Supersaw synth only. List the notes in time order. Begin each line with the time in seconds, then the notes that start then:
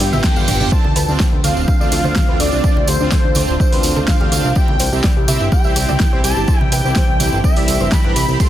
Already playing: B3 F4 G4
0.24 B3 F4 A4
0.36 B3 F4 G4
0.60 B3 F4 G4
0.72 C4 D4 F4
1.09 C4 D4 F4
1.44 C4 D4 F4
1.81 C4 D4 F4
2.29 C4 D4 F4
2.40 C4 D4 F4
2.64 C4 D4 F4
3.01 C4 D4 F4
3.36 C4 D4 F4
3.72 C4 D4 F4
4.20 C4 D4 F4
4.32 C4 D4 F4
4.56 C4 E4 G4
4.92 C4 E4 G4
5.28 C4 E4 G4
5.64 C4 E4 G4
6.13 C4 E4 G4
6.24 C4 E4 G4
6.48 C4 E4 G4
6.85 C4 E4 G4
7.20 C4 E4 G4
7.57 C4 E4 G4
7.92 C4 E4 A4
8.05 C4 E4 G4
8.29 C4 E4 G4
8.40 A3 F4 G4